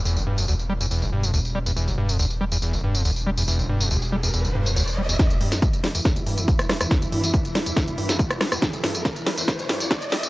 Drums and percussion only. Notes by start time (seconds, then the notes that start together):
0.05 tambourine
0.16 tambourine
0.38 tambourine
0.48 tambourine
0.59 tambourine
0.81 tambourine
0.91 tambourine
1.02 tambourine
1.23 tambourine
1.34 tambourine
1.45 tambourine
1.66 tambourine
1.77 tambourine
1.88 tambourine
2.09 tambourine
2.19 tambourine
2.30 tambourine
2.52 tambourine
2.62 tambourine
2.73 tambourine
2.95 tambourine
3.05 tambourine
3.16 tambourine
3.38 tambourine
3.48 tambourine
3.59 tambourine
3.80 tambourine
3.91 tambourine
4.02 tambourine
4.23 tambourine
4.34 tambourine
4.45 tambourine
4.66 tambourine
4.76 tambourine
4.88 tambourine
5.09 tambourine
5.19 kick, snare, closed hi-hat
5.30 closed hi-hat, tambourine
5.41 open hi-hat
5.52 snare, closed hi-hat, tambourine
5.62 kick, closed hi-hat, tambourine
5.73 closed hi-hat, tambourine
5.84 snare, open hi-hat
5.95 closed hi-hat, tambourine
6.05 kick, snare, closed hi-hat, tambourine
6.16 closed hi-hat, tambourine
6.26 open hi-hat
6.38 closed hi-hat, tambourine
6.48 kick, closed hi-hat, tambourine
6.59 cross-stick, closed hi-hat, tambourine
6.69 cross-stick, snare, open hi-hat
6.81 cross-stick, closed hi-hat, tambourine
6.91 kick, snare, closed hi-hat, tambourine
7.02 closed hi-hat, tambourine
7.12 open hi-hat
7.23 closed hi-hat, tambourine
7.34 kick, closed hi-hat
7.45 closed hi-hat, tambourine
7.55 snare, open hi-hat
7.66 closed hi-hat, tambourine
7.76 kick, snare, closed hi-hat, tambourine
7.88 closed hi-hat, tambourine
7.98 open hi-hat
8.09 snare, closed hi-hat, tambourine
8.19 kick, closed hi-hat, tambourine
8.31 cross-stick, closed hi-hat, tambourine
8.41 cross-stick, snare, open hi-hat
8.52 cross-stick, closed hi-hat, tambourine
8.62 kick, snare, closed hi-hat, tambourine
8.73 closed hi-hat, tambourine
8.84 snare, open hi-hat
8.95 closed hi-hat, tambourine
9.05 kick, snare, closed hi-hat, tambourine
9.16 closed hi-hat, tambourine
9.27 snare, open hi-hat
9.38 closed hi-hat, tambourine
9.48 kick, snare, closed hi-hat, tambourine
9.59 closed hi-hat, tambourine
9.69 snare, open hi-hat
9.81 closed hi-hat, tambourine
9.91 kick, snare, closed hi-hat
10.02 closed hi-hat, tambourine
10.12 snare, open hi-hat
10.23 closed hi-hat, tambourine